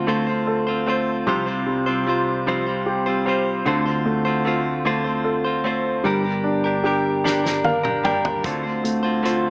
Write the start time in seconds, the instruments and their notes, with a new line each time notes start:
Already playing: fingered electric bass D2, grand piano D3 A3 F4
0.07 clean electric guitar D3 A3 C4 F4 C5, grand piano A3
0.27 clean electric guitar C4 F4 C5
0.47 grand piano A4
0.67 clean electric guitar C4 F4 C5
0.87 clean electric guitar A3 C4 F4 C5, grand piano C5
1.27 fingered electric bass C2, clean electric guitar C3 F3 G3 C4 F4 C5, grand piano C3
1.46 clean electric guitar G3 C4 F4 C5
1.67 grand piano G3
1.86 clean electric guitar G3 C4 F4 C5
2.06 clean electric guitar G3 C4 F4 C5, grand piano F4
2.46 clean electric guitar C3 F3 G3 C4 F4 C5, grand piano G3
2.66 clean electric guitar G3 C4 F4 C5
2.86 grand piano G4
3.06 clean electric guitar G3 C4 F4 C5
3.26 clean electric guitar G3 C4 F4 C5, grand piano C5
3.66 fingered electric bass D2, clean electric guitar D3 A3 C4 F4 C5, grand piano D3
3.86 clean electric guitar C4 F4 C5
4.06 grand piano A3
4.25 clean electric guitar C4 F4 C5
4.45 clean electric guitar A3 C4 F4 C5, grand piano F4
4.85 clean electric guitar D3 A3 C4 F4 C5, grand piano A3
5.04 clean electric guitar C4 F4 C5
5.24 grand piano A4
5.44 clean electric guitar C4 F4 C5
5.64 clean electric guitar A3 C4 F4 C5, grand piano C5
6.04 fingered electric bass G1, grand piano G3, clean electric guitar G3 D4 G4 A#4
6.24 clean electric guitar D4 G4 A#4
6.44 grand piano D4
6.64 clean electric guitar D4 G4 A#4
6.84 clean electric guitar G3 D4 G4 A#4, grand piano G4
7.24 clean electric guitar G3 D4 G4 A#4, grand piano D4, snare
7.44 clean electric guitar D4 G4 A#4, snare
7.64 grand piano A#4 F5, high tom
7.83 clean electric guitar D4 G4 A#4, mid tom
8.04 clean electric guitar G3 D4 G4 A#4, grand piano D5 G5, mid tom
8.25 floor tom
8.44 fingered electric bass D2, clean electric guitar D3 A3 C4 F4 C5, grand piano D3, kick, closed hi-hat
8.63 clean electric guitar C4 F4 C5
8.84 grand piano A3, closed hi-hat
9.03 clean electric guitar C4 F4 C5
9.23 clean electric guitar A3 C4 F4 C5, grand piano F4, cross-stick, closed hi-hat